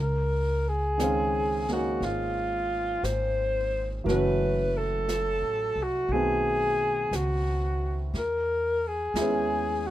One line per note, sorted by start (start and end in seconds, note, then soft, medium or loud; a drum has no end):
0.00 1.97 C#2 medium
0.00 0.70 A#4 medium
0.68 1.70 G#4 medium
0.98 4.07 D#3 soft
0.98 4.07 G#3 soft
0.98 4.08 C4 soft
0.98 1.70 C#4 soft
0.98 brush sweep soft
0.98 snare soft
0.98 hi-hat pedal medium
1.03 4.09 F5 soft
1.68 4.07 A#3 soft
1.68 4.06 C#4 soft
1.68 4.08 D#4 soft
1.68 snare soft
1.73 2.06 F#4 medium
1.73 4.08 G#4 soft
2.01 3.00 G#1 medium
2.01 3.06 F4 medium
2.01 brush sweep soft
2.01 snare soft
3.03 4.02 G#1 medium
3.03 3.91 C5 medium
3.03 brush sweep soft
3.03 snare soft
3.03 hi-hat pedal soft
4.04 5.39 F#1 medium
4.04 6.09 E3 soft
4.04 6.09 F#3 soft
4.04 6.10 A3 soft
4.04 6.11 C#4 soft
4.04 4.79 B4 medium
4.08 6.11 F#4 medium
4.08 brush sweep soft
4.08 snare soft
4.77 5.84 A4 medium
5.09 brush sweep soft
5.09 snare soft
5.09 hi-hat pedal soft
5.42 5.74 A1 soft
5.76 6.08 C2 medium
5.83 6.14 F#4 medium
6.09 7.07 B1 medium
6.09 8.15 D#3 soft
6.09 8.15 B3 soft
6.09 8.15 C4 soft
6.09 7.17 G#4 medium
6.09 brush sweep soft
6.13 8.15 A3 soft
6.13 8.15 F#4 soft
7.11 8.10 C#2 medium
7.11 brush sweep soft
7.11 snare soft
7.11 hi-hat pedal soft
7.16 8.00 F#4 medium
8.14 9.11 E2 medium
8.14 8.89 A#4 medium
8.14 brush sweep soft
8.14 snare soft
8.87 9.88 G#4 medium
9.14 9.90 D#2 medium
9.14 9.90 G#3 soft
9.14 9.90 E4 soft
9.14 brush sweep soft
9.14 snare soft
9.14 hi-hat pedal soft
9.19 9.90 B3 soft
9.19 9.90 C#4 soft
9.19 9.90 G#4 soft
9.87 9.90 F#4 medium